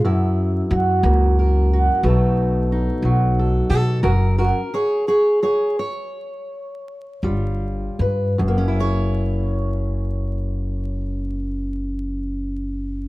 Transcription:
0.03 0.60 F#2 medium
0.03 2.04 F#2 medium
0.03 2.00 E4 medium
0.71 0.99 F#2 medium
0.71 1.71 F#4 medium
1.03 1.87 C#2 medium
1.03 2.00 A#3 medium
1.39 2.01 A#4 medium
1.73 2.01 F#4 medium
2.03 2.87 B1 medium
2.03 4.05 B2 medium
2.03 3.04 F#3 medium
2.03 4.05 A3 medium
2.03 2.71 D#4 medium
2.03 3.38 A4 medium
2.72 4.01 D#4 soft
3.02 3.59 B1 medium
3.02 4.01 F#3 medium
3.39 3.69 A4 soft
3.69 4.05 B2 medium
3.69 3.76 F#4 medium
3.69 4.03 A4 medium
4.03 4.50 F#1 medium
4.03 4.59 F#2 medium
4.03 4.09 F#4 medium
4.03 4.37 A#4 medium
4.39 4.44 F#4 medium
4.39 4.73 A#4 medium
4.74 5.07 G#4 medium
4.74 5.07 C#5 medium
5.08 5.41 G#4 medium
5.08 5.42 C#5 medium
5.43 5.78 G#4 medium
5.43 5.78 C#5 medium
5.79 8.01 C#5 medium
7.23 7.87 G1 medium
7.23 8.35 G3 medium
7.23 8.35 F4 soft
7.99 8.33 G2 medium
7.99 8.35 B4 soft
8.38 13.08 F#1 medium
8.38 13.08 F#2 medium
8.48 13.08 A#3 medium
8.58 13.08 C#4 medium
8.68 13.08 E4 medium
8.80 13.08 C#5 medium

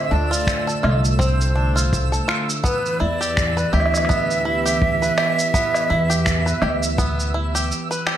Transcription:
0.00 2.65 D3 medium
0.00 2.65 A3 medium
0.00 2.65 F4 medium
0.00 2.66 C5 medium
0.00 0.15 E5 medium
0.00 8.17 E6 medium
0.11 0.74 D2 medium
0.11 0.30 D4 medium
0.11 0.95 D5 loud
0.31 0.66 F4 medium
0.31 shaker medium
0.47 finger snap medium
0.47 kick medium
0.47 shaker soft
0.67 0.82 A4 medium
0.67 shaker soft
0.83 2.18 C2 medium
0.83 1.03 F4 medium
0.83 low woodblock medium
1.05 shaker medium
1.19 1.54 C4 medium
1.19 2.25 C5 medium
1.19 kick loud
1.19 shaker soft
1.41 shaker soft
1.55 1.74 D4 medium
1.76 2.10 F4 medium
1.76 shaker medium
1.93 kick loud
1.93 shaker soft
2.12 2.27 A4 medium
2.12 shaker soft
2.28 2.47 F4 medium
2.28 finger snap medium
2.50 shaker medium
2.64 8.17 E3 medium
2.64 2.99 B3 loud
2.64 3.02 B4 medium
2.64 kick medium
2.64 shaker medium
2.86 shaker soft
3.00 3.63 E2 medium
3.00 3.19 E4 medium
3.00 8.17 G4 medium
3.00 3.74 D5 loud
3.05 8.17 B3 medium
3.21 3.55 G4 medium
3.21 shaker medium
3.37 finger snap medium
3.37 kick loud
3.37 shaker soft
3.45 8.17 B4 medium
3.57 3.71 B4 medium
3.57 shaker soft
3.73 5.08 D2 loud
3.73 3.92 G4 medium
3.73 7.70 E5 loud
3.73 low woodblock soft
3.80 low woodblock soft
3.86 low woodblock soft
3.94 low woodblock medium
3.94 shaker medium
3.97 low woodblock medium
4.05 low woodblock medium
4.09 4.44 B3 loud
4.09 kick loud
4.09 shaker soft
4.31 shaker soft
4.45 4.64 E4 medium
4.66 5.00 G4 medium
4.66 shaker medium
4.82 kick loud
5.02 5.16 B4 medium
5.02 shaker soft
5.18 5.37 G4 medium
5.18 finger snap medium
5.18 low woodblock medium
5.39 shaker medium
5.54 5.88 B3 medium
5.54 kick medium
5.54 shaker medium
5.74 low woodblock medium
5.74 shaker soft
5.90 6.52 E2 medium
5.90 6.08 E4 medium
6.10 6.44 G4 medium
6.10 shaker medium
6.26 finger snap medium
6.26 kick medium
6.26 shaker soft
6.46 6.60 B4 medium
6.46 shaker soft
6.62 7.71 D2 medium
6.62 6.82 G4 medium
6.62 low woodblock medium
6.83 shaker medium
6.98 7.33 B3 medium
6.98 kick loud
6.98 shaker soft
7.20 shaker soft
7.34 7.53 E4 medium
7.55 7.89 G4 medium
7.55 shaker medium
7.72 shaker soft
7.91 8.05 B4 medium
7.91 shaker soft
8.07 8.17 G4 medium
8.07 finger snap medium

